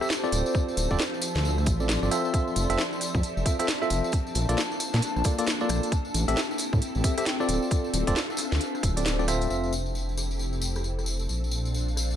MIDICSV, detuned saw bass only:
0, 0, Header, 1, 2, 480
1, 0, Start_track
1, 0, Key_signature, -1, "major"
1, 0, Tempo, 447761
1, 587, Time_signature, 4, 2, 24, 8
1, 13038, End_track
2, 0, Start_track
2, 0, Title_t, "Detuned saw bass"
2, 0, Program_c, 0, 39
2, 345, Note_on_c, 0, 26, 86
2, 459, Note_off_c, 0, 26, 0
2, 824, Note_on_c, 0, 26, 97
2, 938, Note_off_c, 0, 26, 0
2, 973, Note_on_c, 0, 26, 95
2, 1045, Note_off_c, 0, 26, 0
2, 1450, Note_on_c, 0, 38, 98
2, 1786, Note_on_c, 0, 33, 97
2, 1802, Note_off_c, 0, 38, 0
2, 2118, Note_off_c, 0, 33, 0
2, 2172, Note_on_c, 0, 31, 97
2, 2244, Note_off_c, 0, 31, 0
2, 2744, Note_on_c, 0, 29, 93
2, 2858, Note_off_c, 0, 29, 0
2, 2892, Note_on_c, 0, 29, 92
2, 2964, Note_off_c, 0, 29, 0
2, 3372, Note_on_c, 0, 41, 101
2, 3444, Note_off_c, 0, 41, 0
2, 3610, Note_on_c, 0, 29, 85
2, 3683, Note_off_c, 0, 29, 0
2, 4185, Note_on_c, 0, 29, 87
2, 4299, Note_off_c, 0, 29, 0
2, 4665, Note_on_c, 0, 34, 93
2, 4778, Note_off_c, 0, 34, 0
2, 4813, Note_on_c, 0, 34, 94
2, 4885, Note_off_c, 0, 34, 0
2, 5293, Note_on_c, 0, 46, 101
2, 5365, Note_off_c, 0, 46, 0
2, 5533, Note_on_c, 0, 34, 86
2, 5605, Note_off_c, 0, 34, 0
2, 6104, Note_on_c, 0, 34, 86
2, 6218, Note_off_c, 0, 34, 0
2, 6585, Note_on_c, 0, 33, 96
2, 6698, Note_off_c, 0, 33, 0
2, 6732, Note_on_c, 0, 33, 95
2, 6804, Note_off_c, 0, 33, 0
2, 7214, Note_on_c, 0, 45, 108
2, 7285, Note_off_c, 0, 45, 0
2, 7454, Note_on_c, 0, 33, 87
2, 7525, Note_off_c, 0, 33, 0
2, 8025, Note_on_c, 0, 26, 88
2, 8139, Note_off_c, 0, 26, 0
2, 8505, Note_on_c, 0, 26, 103
2, 8619, Note_off_c, 0, 26, 0
2, 8654, Note_on_c, 0, 26, 98
2, 8725, Note_off_c, 0, 26, 0
2, 9134, Note_on_c, 0, 38, 99
2, 9205, Note_off_c, 0, 38, 0
2, 9467, Note_on_c, 0, 26, 78
2, 10152, Note_off_c, 0, 26, 0
2, 10185, Note_on_c, 0, 29, 86
2, 12088, Note_off_c, 0, 29, 0
2, 12109, Note_on_c, 0, 34, 82
2, 13038, Note_off_c, 0, 34, 0
2, 13038, End_track
0, 0, End_of_file